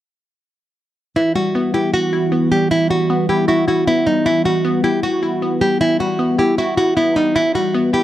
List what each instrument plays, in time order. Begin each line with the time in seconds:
1.16 synth pluck E3, ambient pad E3 G3 B3 F#4, nylon-string guitar E4
1.35 synth pluck G3, nylon-string guitar F#4
1.55 synth pluck B3
1.74 synth pluck E4, nylon-string guitar G4
1.94 nylon-string guitar F#4, synth pluck F#4
2.13 synth pluck E4
2.32 synth pluck B3
2.52 synth pluck G3, nylon-string guitar G4
2.71 synth pluck E3, nylon-string guitar E4
2.90 synth pluck G3, nylon-string guitar F#4
3.10 synth pluck B3
3.29 synth pluck E4, nylon-string guitar G4
3.48 nylon-string guitar E4, synth pluck F#4
3.68 synth pluck E4, nylon-string guitar F#4
3.87 synth pluck B3, nylon-string guitar E4
4.07 synth pluck G3, nylon-string guitar D#4
4.26 synth pluck E3, nylon-string guitar E4
4.45 synth pluck G3, nylon-string guitar F#4
4.65 synth pluck B3
4.84 synth pluck E4, nylon-string guitar G4
5.03 nylon-string guitar F#4, synth pluck F#4
5.23 synth pluck E4
5.42 synth pluck B3
5.61 synth pluck G3, nylon-string guitar G4
5.81 synth pluck E3, nylon-string guitar E4
6.00 synth pluck G3, nylon-string guitar F#4
6.19 synth pluck B3
6.38 synth pluck E4, nylon-string guitar G4
6.58 nylon-string guitar E4, synth pluck F#4
6.77 synth pluck E4, nylon-string guitar F#4
6.97 synth pluck B3, nylon-string guitar E4
7.16 synth pluck G3, nylon-string guitar D#4
7.35 synth pluck E3, nylon-string guitar E4
7.55 synth pluck G3, nylon-string guitar F#4
7.74 synth pluck B3
7.93 synth pluck E4, nylon-string guitar G4